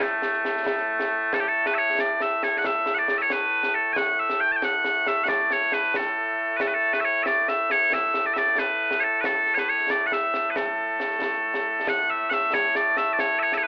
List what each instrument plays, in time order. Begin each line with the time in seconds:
Already playing: bagpipes A2 A3
0.00 bagpipes A3, concert bass drum, snare
0.22 snare
0.33 snare
0.45 snare
0.56 snare
0.66 concert bass drum, snare
0.77 snare
1.00 snare
1.33 bagpipes A4, concert bass drum, snare
1.40 bagpipes G4
1.48 bagpipes A4
1.66 bagpipes B4, snare
1.74 bagpipes C#5 E5
1.99 bagpipes D5, snare
2.20 bagpipes E5, snare
2.43 bagpipes C#5, snare
2.58 bagpipes F#5
2.64 bagpipes E5, concert bass drum, snare
2.86 snare
2.94 bagpipes D5 F#5, snare
3.08 bagpipes D5, snare
3.18 bagpipes E5, snare
3.22 bagpipes C#5
3.30 bagpipes B4, snare
3.63 snare
3.75 bagpipes A4
3.93 bagpipes F#5 G#5, concert bass drum, snare
4.19 bagpipes E5
4.29 snare
4.40 bagpipes G5
4.52 bagpipes A5
4.56 bagpipes G5
4.62 bagpipes F#5, snare
4.84 snare
5.06 bagpipes E5, snare
5.24 bagpipes F#5
5.28 bagpipes D5, concert bass drum, snare
5.50 bagpipes C#5, snare
5.61 snare
5.72 bagpipes B4, snare
5.83 snare
5.94 bagpipes A4, concert bass drum, snare
6.57 bagpipes B4, concert bass drum, snare
6.61 bagpipes A4
6.67 bagpipes B4
6.74 bagpipes A4
6.93 bagpipes B4, snare
7.00 bagpipes E5
7.05 bagpipes C#5
7.23 bagpipes D5 E5, snare
7.48 bagpipes E5, snare
7.70 bagpipes C#5, snare
7.93 bagpipes E5, concert bass drum, snare
8.14 snare
8.26 bagpipes D5, snare
8.34 bagpipes E5, snare
8.38 bagpipes D5
8.47 snare
8.58 bagpipes B4, snare
8.91 snare
9.00 bagpipes A4 C#5
9.21 bagpipes B4, concert bass drum, snare
9.25 bagpipes A4
9.46 snare
9.54 bagpipes C#5, snare
9.58 bagpipes B4
9.69 bagpipes C#5
9.79 snare
9.90 bagpipes D5, snare
10.06 bagpipes F#5
10.12 bagpipes E5, snare
10.34 snare
10.50 bagpipes B4
10.56 bagpipes A4, concert bass drum, snare
11.00 snare
11.11 snare
11.22 concert bass drum, snare
11.33 snare
11.54 snare
11.87 bagpipes F#5, concert bass drum, snare
12.10 bagpipes E5
12.30 bagpipes E5 F#5, snare
12.54 bagpipes C#5, concert bass drum, snare
12.75 bagpipes D5, snare
12.97 bagpipes E5, snare
13.13 bagpipes D5
13.19 bagpipes C#5, concert bass drum, snare
13.39 bagpipes C#5 E5
13.52 bagpipes E5, snare
13.57 bagpipes C#5
13.63 bagpipes B4